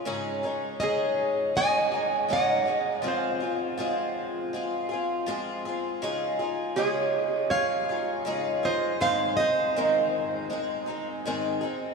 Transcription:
<<
  \new Staff \with { instrumentName = "Steel-string acoustic guitar" } { \time 4/4 \key aes \major \tempo 4 = 80 r4 ees''4 aes''4 ges''4 | f''2 r2 | r4 des''4 f''4 r8 ees''8 | f''8 ees''2 r4. | }
  \new Staff \with { instrumentName = "Resonator guitar played with a steel bar" } { \time 4/4 \key aes \major r4 aes'4 ees''4 ees''4 | c''2 r2 | r4 aes'4 des''4 r8 c''8 | c''8 c''2 r4. | }
  \new Staff \with { instrumentName = "Twelve-string acoustic guitar" } { \time 4/4 \key aes \major <aes, des aes des' ees' aes'>8 <aes des' ees' aes'>8 <aes, des aes des' ees' aes'>4 <aes des' ees' aes'>8 <aes des' ees' aes'>8 <aes, des aes des' ees' aes'>8 <aes des' ees' aes'>8 | <f aes c' f' aes'>8 <c' f' aes'>8 <f aes c' f' aes'>4 <aes c' f' aes'>8 <c' f' aes'>8 <f aes c' f' aes'>8 <c' f' aes'>8 | <des aes ees' f' aes'>8 <ees' f' aes'>8 <des aes ees' f' aes'>4 <aes ees' f' aes'>8 <ees' f' aes'>8 <des aes ees' f' aes'>8 <ees' f' aes'>8 | <aes, ees aes c' ees' aes'>8 <aes c' ees' aes'>8 <aes, ees aes c' ees' aes'>4 <aes c' ees' aes'>8 <aes c' ees' aes'>8 <aes, ees aes c' ees' aes'>8 <aes c' ees' aes'>8 | }
>>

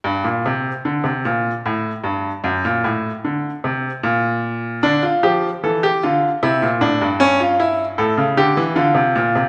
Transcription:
\new Staff \with { instrumentName = "Grand piano" } { \clef bass \time 3/4 \key d \phrygian \tempo 4 = 76 << { g,16 bes,16 c8 d16 c16 bes,8 a,8 g,8 | fis,16 bes,16 a,8 d8 c8 bes,4 | d'16 f'16 g'8 a'16 g'16 f'8 e'8 d'8 | cis'16 f'16 e'8 a'8 g'8 f'4 | } \\ { r2. | r2. | d8 f8 e8 d8 c16 bes,16 a,16 g,16~ | g,4 a,16 cis16 d16 e16 d16 c16 bes,16 c16 | } >> }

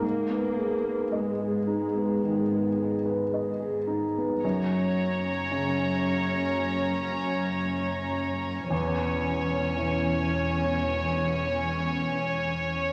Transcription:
<<
  \new Staff \with { instrumentName = "Violin section" } { \time 4/4 \key fis \mixolydian \tempo 4 = 56 r1 | ais''1 | gis''1 | }
  \new Staff \with { instrumentName = "Violin section" } { \time 4/4 \key fis \mixolydian r1 | cis''1 | cis''1 | }
  \new Staff \with { instrumentName = "Grand piano" } { \time 4/4 \key fis \mixolydian gis,16 b16 gis'16 b'16 dis''16 gis'16 dis'16 b16 dis16 b16 gis'16 b'16 dis''16 gis'16 dis'16 b16 | fis,4 cis2. | e,4 e2. | }
  \new Staff \with { instrumentName = "Viola section" } { \time 4/4 \key fis \mixolydian ais4 gis2~ gis8 r8 | cis'1 | cis'1 | }
  \new Staff \with { instrumentName = "Cello section" } { \clef bass \time 4/4 \key fis \mixolydian gis,4 gis,4 gis,4 gis,4 | fis,1 | e,1 | }
  \new Staff \with { instrumentName = "Double bass section" } { \clef bass \time 4/4 \key fis \mixolydian r1 | fis,,1 | e,,1 | }
>>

